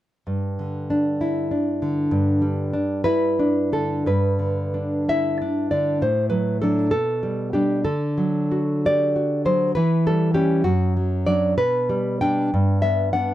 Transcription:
0.27 2.07 G2 soft
0.59 1.52 D3 soft
0.90 1.50 D4 soft
1.21 2.12 E4 soft
1.51 2.42 D4 soft
1.82 2.74 D3 soft
2.11 4.02 G2 medium
2.42 3.39 G3 soft
2.73 3.05 D4 soft
3.04 4.06 E4 soft
3.04 3.69 B4 medium
3.39 4.07 D4 soft
3.72 4.06 D3 soft
3.72 4.05 A4 medium
4.06 5.97 G2 soft
4.06 5.04 B4 medium
4.39 5.40 D3 soft
4.74 5.40 D4 soft
5.09 6.01 E4 soft
5.09 5.69 E5 medium
5.42 6.01 D4 soft
5.71 6.02 D3 soft
5.71 6.00 D5 medium
6.02 6.90 A2 soft
6.02 6.29 C5 medium
6.30 6.61 F#3 soft
6.30 6.60 B4 medium
6.62 6.90 F#3 soft
6.62 6.90 D4 soft
6.62 6.90 A4 medium
6.91 7.83 B2 medium
6.91 7.52 A4 medium
7.23 7.53 G3 soft
7.53 7.83 G3 soft
7.53 7.83 D4 soft
7.53 7.84 G4 medium
7.85 9.72 D3 soft
7.85 8.80 A4 medium
8.18 9.15 F#3 soft
8.52 9.15 F#4 soft
8.86 9.77 G4 soft
8.86 9.44 D5 medium
9.16 9.76 F#4 soft
9.45 9.76 F#3 soft
9.45 9.75 C5 medium
9.75 10.62 E3 medium
9.75 10.04 B4 medium
10.06 10.33 G3 medium
10.06 10.34 A4 medium
10.34 10.61 G3 soft
10.34 10.62 C#4 medium
10.34 10.63 G4 medium
10.64 11.54 F#2 medium
10.64 10.93 F#4 medium
10.97 11.26 F#3 soft
11.27 11.54 F#3 soft
11.27 11.55 D4 soft
11.27 11.56 D5 medium
11.58 12.51 B2 medium
11.58 12.20 B4 medium
11.89 12.21 G3 soft
12.21 12.50 G3 soft
12.21 12.50 D4 soft
12.21 12.80 G5 medium
12.54 13.34 G2 medium
12.82 13.13 B3 soft
12.82 13.11 E5 medium
13.13 13.34 B3 soft
13.13 13.34 D4 soft
13.13 13.34 F#5 medium

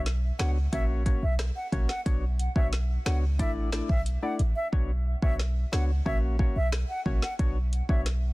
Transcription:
0.00 0.31 B1 loud
0.06 snare medium
0.06 closed hi-hat medium
0.39 0.68 C#2 loud
0.39 0.58 B3 medium
0.39 0.58 D4 medium
0.39 0.58 F#4 medium
0.39 0.58 C#5 medium
0.39 0.51 F#5 medium
0.39 cross-stick medium
0.39 snare loud
0.39 closed hi-hat soft
0.72 1.15 A#1 loud
0.72 1.03 A#3 medium
0.72 1.03 C#4 medium
0.72 1.03 F#4 medium
0.72 1.04 C#5 loud
0.72 0.84 E5 medium
0.72 kick medium
0.72 closed hi-hat medium
1.06 1.24 A#3 medium
1.06 1.24 C#4 medium
1.06 1.24 F#4 medium
1.06 1.25 C#5 medium
1.06 kick medium
1.06 closed hi-hat medium
1.23 1.51 B1 medium
1.23 1.34 E5 medium
1.39 cross-stick medium
1.39 snare loud
1.39 closed hi-hat medium
1.56 1.68 F#5 medium
1.72 1.87 A#1 medium
1.72 1.91 A#3 medium
1.72 1.91 C#4 medium
1.72 1.91 F#4 medium
1.72 1.91 C#5 medium
1.72 kick medium
1.72 closed hi-hat soft
1.89 2.01 F#5 medium
1.89 snare medium
2.06 2.48 B1 loud
2.06 2.24 B3 medium
2.06 2.24 D4 medium
2.06 2.25 F#4 medium
2.06 2.25 C#5 loud
2.06 kick loud
2.06 closed hi-hat medium
2.39 closed hi-hat medium
2.56 2.98 B1 loud
2.56 2.74 B3 medium
2.56 2.74 D4 medium
2.56 2.75 F#4 medium
2.56 2.75 C#5 medium
2.56 2.68 E5 medium
2.56 kick loud
2.73 snare medium
2.73 closed hi-hat medium
3.06 3.41 C#2 loud
3.06 3.24 B3 medium
3.06 3.24 D4 medium
3.06 3.25 F#4 medium
3.06 3.25 C#5 medium
3.06 3.18 F#5 medium
3.06 cross-stick medium
3.06 snare loud
3.06 closed hi-hat soft
3.39 3.82 A1 loud
3.39 3.70 A3 medium
3.39 3.70 D4 medium
3.39 3.70 E4 medium
3.39 3.70 D5 loud
3.39 3.51 E5 medium
3.39 kick medium
3.39 closed hi-hat medium
3.72 3.91 A3 medium
3.72 3.91 D4 medium
3.72 3.91 E4 medium
3.72 3.91 D5 medium
3.72 cross-stick medium
3.72 snare loud
3.72 closed hi-hat medium
3.89 4.17 B1 medium
3.89 4.01 E5 medium
3.89 kick medium
4.06 closed hi-hat medium
4.22 4.41 A3 medium
4.22 4.41 D4 medium
4.22 4.41 E4 medium
4.22 4.41 D5 medium
4.22 4.34 F#5 medium
4.39 4.53 A1 loud
4.39 closed hi-hat soft
4.56 4.68 E5 medium
4.72 5.15 B1 loud
4.72 4.91 B3 medium
4.72 4.91 D4 medium
4.72 4.91 F#4 medium
4.72 4.91 C#5 loud
4.72 kick loud
5.22 5.65 B1 loud
5.22 5.41 B3 medium
5.22 5.41 D4 medium
5.22 5.41 F#4 medium
5.22 5.41 C#5 medium
5.22 5.34 E5 medium
5.22 kick medium
5.39 snare medium
5.72 6.01 C#2 loud
5.72 5.91 B3 medium
5.72 5.91 D4 medium
5.72 5.91 F#4 medium
5.72 5.91 C#5 medium
5.72 5.84 F#5 medium
5.72 cross-stick medium
5.72 snare loud
6.06 6.48 A#1 loud
6.06 6.36 A#3 loud
6.06 6.37 C#4 medium
6.06 6.37 F#4 medium
6.06 6.37 C#5 loud
6.06 6.18 E5 medium
6.06 kick medium
6.39 6.58 A#3 medium
6.39 6.58 C#4 medium
6.39 6.58 F#4 medium
6.39 6.58 C#5 medium
6.39 kick medium
6.56 6.84 B1 medium
6.56 6.68 E5 medium
6.72 cross-stick medium
6.72 snare loud
6.89 7.01 F#5 medium
7.06 7.20 A#1 medium
7.06 7.24 A#3 medium
7.06 7.24 C#4 medium
7.06 7.25 F#4 medium
7.06 7.25 C#5 medium
7.06 kick medium
7.22 7.34 F#5 medium
7.22 snare medium
7.39 7.82 B1 loud
7.39 7.58 B3 medium
7.39 7.58 D4 medium
7.39 7.58 F#4 medium
7.39 7.58 C#5 loud
7.39 kick loud
7.39 closed hi-hat medium
7.73 closed hi-hat medium
7.89 8.31 B1 loud
7.89 8.08 B3 medium
7.89 8.08 D4 medium
7.89 8.08 F#4 medium
7.89 8.08 C#5 medium
7.89 8.01 E5 medium
7.89 kick medium
8.06 snare medium
8.06 closed hi-hat medium

